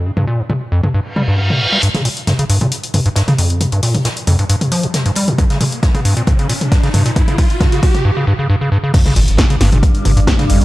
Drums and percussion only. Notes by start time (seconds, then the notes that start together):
0.17 mid tom
0.50 mid tom
0.84 mid tom
1.16 mid tom
1.50 mid tom
1.83 closed hi-hat
1.95 snare, closed hi-hat, mid tom
2.05 closed hi-hat, open hi-hat
2.17 closed hi-hat
2.27 snare, closed hi-hat, mid tom
2.39 closed hi-hat
2.50 closed hi-hat, open hi-hat
2.61 closed hi-hat, mid tom
2.72 closed hi-hat
2.83 closed hi-hat
2.93 closed hi-hat, open hi-hat, mid tom
3.06 closed hi-hat
3.16 snare, closed hi-hat
3.27 snare, closed hi-hat, mid tom
3.38 closed hi-hat, open hi-hat
3.50 closed hi-hat
3.61 closed hi-hat, mid tom
3.72 closed hi-hat
3.82 open hi-hat
3.95 closed hi-hat, mid tom
4.05 snare, closed hi-hat
4.17 closed hi-hat
4.27 closed hi-hat, open hi-hat, mid tom
4.39 closed hi-hat
4.49 closed hi-hat
4.61 closed hi-hat, mid tom
4.71 closed hi-hat, open hi-hat
4.83 closed hi-hat
4.94 snare, closed hi-hat, mid tom
5.06 closed hi-hat
5.15 closed hi-hat, open hi-hat
5.28 closed hi-hat, mid tom
5.38 kick, closed hi-hat
5.50 snare, closed hi-hat
5.61 closed hi-hat, open hi-hat, mid tom
5.72 closed hi-hat
5.82 kick, snare, closed hi-hat
5.95 closed hi-hat, mid tom
6.05 closed hi-hat, open hi-hat
6.16 closed hi-hat
6.27 kick, closed hi-hat, mid tom
6.39 closed hi-hat
6.49 closed hi-hat, open hi-hat
6.61 closed hi-hat, mid tom
6.72 kick, snare, closed hi-hat
6.83 snare, closed hi-hat
6.94 closed hi-hat, open hi-hat, mid tom
7.06 closed hi-hat
7.16 kick, closed hi-hat
7.28 closed hi-hat, mid tom
7.38 kick, open hi-hat
7.50 closed hi-hat
7.61 kick, snare, closed hi-hat, mid tom
7.72 closed hi-hat
7.83 kick, closed hi-hat, open hi-hat
7.95 closed hi-hat, mid tom
8.94 kick, closed hi-hat, crash
9.05 snare, closed hi-hat, mid tom
9.16 closed hi-hat, open hi-hat
9.28 closed hi-hat
9.37 kick, snare, closed hi-hat, mid tom
9.50 closed hi-hat
9.60 snare, closed hi-hat, open hi-hat
9.72 closed hi-hat, mid tom
9.83 kick, closed hi-hat
9.94 closed hi-hat
10.05 closed hi-hat, open hi-hat, mid tom
10.17 closed hi-hat
10.27 kick, snare, closed hi-hat
10.39 snare, closed hi-hat, mid tom
10.49 closed hi-hat, open hi-hat
10.61 closed hi-hat